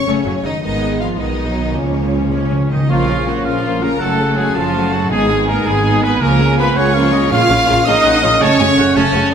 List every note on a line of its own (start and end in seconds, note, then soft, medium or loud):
0.06 0.14 F#1 medium
0.06 0.14 F#2 medium
0.06 0.43 C#3 medium
0.06 0.24 A3 medium
0.06 0.24 C#4 medium
0.06 0.44 C#4 medium
0.06 0.44 C#5 medium
0.25 0.32 F#1 soft
0.25 0.33 F#2 soft
0.25 0.32 F#3 soft
0.25 0.32 A3 soft
0.43 0.51 F#1 soft
0.43 0.51 F#2 soft
0.43 0.50 C#3 soft
0.43 0.63 D#3 medium
0.43 0.50 F#3 soft
0.43 0.62 D#4 medium
0.43 0.61 D#5 medium
0.62 1.14 G#1 medium
0.62 1.14 G#2 medium
0.62 1.00 D#3 medium
0.62 1.14 G#3 soft
0.62 1.14 B3 medium
0.62 0.99 D#4 medium
0.62 0.99 D#5 medium
1.00 1.19 F3 medium
1.00 1.18 F4 soft
1.00 1.08 F5 medium
1.18 1.74 B1 soft
1.18 1.74 B2 medium
1.18 1.75 D#3 medium
1.18 1.46 G#3 soft
1.18 1.73 B3 soft
1.18 1.75 D#4 medium
1.18 1.74 D#5 medium
1.46 1.75 F#3 soft
1.75 2.70 C#2 soft
1.75 2.28 C#3 soft
1.75 2.70 C#3 soft
1.75 2.70 F3 soft
1.75 2.70 A#3 soft
1.75 2.70 C#4 soft
1.75 2.32 C#5 medium
1.83 1.90 C#3 soft
1.91 1.98 C#3 soft
1.99 2.06 C#3 soft
2.07 2.13 C#3 soft
2.29 2.35 C#3 soft
2.29 2.68 C#3 soft
2.29 2.40 G#3 medium
2.29 2.68 C#4 medium
2.34 2.44 C#3 soft
2.34 2.69 C#5 soft
2.45 2.51 C#3 soft
2.51 2.59 C#3 medium
2.51 2.59 F3 soft
2.61 2.67 C#3 medium
2.69 2.75 C#3 medium
2.69 2.88 D#3 soft
2.69 2.89 D#4 medium
2.69 2.89 D#5 soft
2.76 2.83 C#3 medium
2.88 3.38 A#1 medium
2.88 3.25 F3 medium
2.88 3.06 F3 soft
2.88 3.06 A#3 soft
2.88 3.96 A#3 soft
2.88 3.06 A#3 soft
2.88 5.06 C#4 soft
2.88 3.06 F4 soft
2.88 3.26 F4 medium
2.88 3.41 C#5 medium
2.88 3.26 F5 medium
3.07 3.26 C#3 soft
3.07 3.26 F3 soft
3.07 3.26 C#4 soft
3.07 3.26 A#4 soft
3.26 3.44 F3 soft
3.26 3.44 F#3 medium
3.26 3.45 A#3 soft
3.26 3.45 F4 soft
3.26 3.45 F#4 medium
3.26 3.45 F#5 medium
3.44 3.94 A#1 medium
3.44 3.64 C#3 soft
3.44 3.81 F3 medium
3.44 3.63 F3 soft
3.44 3.63 C#4 soft
3.44 3.81 F4 medium
3.44 3.63 A#4 soft
3.44 4.01 F5 medium
3.44 3.81 F5 medium
3.62 3.81 F3 soft
3.62 3.80 A#3 soft
3.62 3.81 A#3 soft
3.62 3.80 F4 soft
3.81 4.00 C#3 soft
3.81 4.00 F3 soft
3.81 3.99 A#3 soft
3.81 4.00 C#4 soft
3.81 4.00 A#4 soft
3.81 4.00 A#4 medium
3.81 4.00 A#5 medium
3.99 4.49 F#1 medium
3.99 4.18 F#3 soft
3.99 5.08 A3 soft
3.99 4.36 A3 medium
3.99 4.17 A3 soft
3.99 4.18 A3 soft
3.99 4.17 F#4 soft
3.99 4.36 A4 medium
3.99 4.55 F#5 medium
3.99 4.37 A5 medium
4.18 4.37 C#3 soft
4.18 4.36 F#3 soft
4.18 4.37 C#4 soft
4.18 4.37 A4 soft
4.37 4.55 F#3 soft
4.37 4.56 G#3 medium
4.37 4.55 A3 soft
4.37 4.56 A3 soft
4.37 4.56 F#4 soft
4.37 4.55 G#4 medium
4.37 4.55 G#5 medium
4.55 5.04 F#1 soft
4.55 4.74 C#3 soft
4.55 4.92 F3 medium
4.55 4.73 F#3 soft
4.55 4.74 C#4 soft
4.55 4.92 F4 medium
4.55 4.74 A4 soft
4.55 4.92 F5 medium
4.55 5.09 A5 medium
4.74 4.91 F#3 soft
4.74 4.91 A3 soft
4.74 4.91 F#4 soft
4.92 5.11 C#3 soft
4.92 5.11 F#3 soft
4.92 5.11 F#3 medium
4.92 5.11 C#4 soft
4.92 5.11 F#4 medium
4.92 5.11 A4 soft
4.92 5.11 F#5 medium
5.09 5.59 G#1 medium
5.09 5.62 G#2 medium
5.09 5.28 G#3 medium
5.09 5.47 G#3 medium
5.09 6.21 B3 medium
5.09 5.28 B3 medium
5.09 5.27 D#4 soft
5.09 6.21 D#4 medium
5.09 5.47 G#4 medium
5.09 6.78 G#5 medium
5.09 5.48 G#5 medium
5.29 5.48 D#3 soft
5.29 5.48 G#3 soft
5.29 5.47 B3 soft
5.29 5.47 G#4 soft
5.48 5.66 G#3 medium
5.48 5.55 A#3 medium
5.48 5.67 B3 medium
5.48 5.66 D#4 soft
5.48 5.66 A#4 medium
5.48 5.66 A#5 medium
5.65 6.14 G#1 medium
5.65 5.85 D#3 soft
5.65 6.02 G#3 medium
5.65 5.84 G#3 medium
5.65 5.85 B3 medium
5.65 6.03 G#4 medium
5.65 5.85 G#4 medium
5.65 6.03 G#5 medium
5.85 6.01 G#3 soft
5.85 6.02 B3 soft
5.85 6.02 D#4 soft
6.03 6.21 D#3 medium
6.03 6.21 G#3 medium
6.03 6.21 B3 medium
6.03 6.22 B3 soft
6.03 6.22 G#4 soft
6.03 6.21 B4 medium
6.03 6.11 B5 medium
6.21 6.70 C#2 medium
6.21 6.72 C#3 medium
6.21 6.39 F3 medium
6.21 6.58 A#3 medium
6.21 6.38 A#3 medium
6.21 8.37 A#3 medium
6.21 6.39 A#3 medium
6.21 7.29 F4 medium
6.21 6.39 F4 medium
6.21 6.58 A#4 medium
6.21 6.57 A#5 medium
6.39 6.58 C#3 medium
6.39 6.58 G#3 medium
6.39 6.58 C#4 medium
6.39 6.58 G#4 medium
6.58 6.76 F3 medium
6.58 6.76 A#3 medium
6.58 6.76 B3 medium
6.58 6.76 F4 medium
6.58 6.76 B4 medium
6.58 6.76 B5 medium
6.76 7.25 C#2 medium
6.76 6.94 C#3 medium
6.76 6.94 G#3 medium
6.76 7.30 C#4 medium
6.76 6.95 C#4 medium
6.76 6.95 G#4 medium
6.76 7.31 C#5 medium
6.76 6.96 F#5 medium
6.76 7.30 C#6 medium
6.94 7.11 F3 medium
6.94 7.12 A#3 medium
6.94 7.12 F4 medium
6.94 7.12 F5 medium
7.13 7.31 C#3 medium
7.13 7.31 G#3 medium
7.13 7.31 C#4 medium
7.13 7.31 G#4 medium
7.13 7.31 D#5 medium
7.31 7.39 A#1 medium
7.31 7.39 C#3 medium
7.31 7.39 A#3 medium
7.31 9.34 C#4 medium
7.31 7.39 C#4 medium
7.31 7.86 F4 medium
7.31 7.39 F4 medium
7.31 7.87 C#5 medium
7.31 7.85 F5 loud
7.31 7.85 F6 loud
7.49 7.57 A#1 medium
7.49 7.57 C#3 medium
7.49 7.57 A#3 medium
7.49 7.57 C#4 medium
7.49 7.57 F4 medium
7.68 7.75 A#1 medium
7.68 7.76 C#3 medium
7.68 7.76 A#3 medium
7.68 7.75 C#4 medium
7.68 7.76 F4 medium
7.85 7.94 A#1 medium
7.85 7.93 C#3 medium
7.85 7.93 A#3 medium
7.85 7.94 C#4 medium
7.85 8.40 D#4 loud
7.85 7.94 F4 medium
7.85 8.40 D#5 loud
7.85 8.07 F5 medium
7.85 8.40 D#6 medium
8.04 8.12 A#1 medium
8.04 8.11 C#3 medium
8.04 8.11 A#3 medium
8.04 8.12 C#4 medium
8.04 8.12 F4 medium
8.04 8.25 F#5 medium
8.22 8.30 A#1 medium
8.22 8.29 C#3 medium
8.22 8.29 A#3 medium
8.22 8.30 C#4 medium
8.22 8.30 F4 medium
8.22 8.43 F5 medium
8.40 8.48 F#1 medium
8.40 8.48 C#3 medium
8.40 8.48 A3 medium
8.40 9.34 A3 medium
8.40 8.94 C#4 loud
8.40 8.49 C#4 medium
8.40 8.48 F#4 medium
8.40 8.96 C#5 loud
8.40 8.59 A5 medium
8.40 8.95 C#6 loud
8.59 8.66 F#1 medium
8.59 8.67 C#3 medium
8.59 8.66 A3 medium
8.59 8.67 C#4 medium
8.59 8.67 F#4 medium
8.59 8.68 G#5 medium
8.76 8.84 F#1 medium
8.76 8.84 C#3 medium
8.76 8.84 A3 medium
8.76 8.84 C#4 medium
8.76 8.84 F#4 medium
8.76 8.98 F#5 medium
8.95 9.02 F#1 medium
8.95 9.02 C#3 medium
8.95 9.32 C#3 medium
8.95 9.02 A3 medium
8.95 9.31 C#4 loud
8.95 9.03 C#4 medium
8.95 9.03 F#4 medium
8.95 9.32 C#5 medium
8.95 9.31 A5 medium
9.13 9.20 F#1 medium
9.13 9.21 C#3 medium
9.13 9.21 A3 medium
9.13 9.20 C#4 medium
9.13 9.21 F#4 medium
9.31 9.34 C#3 medium
9.31 9.34 A3 medium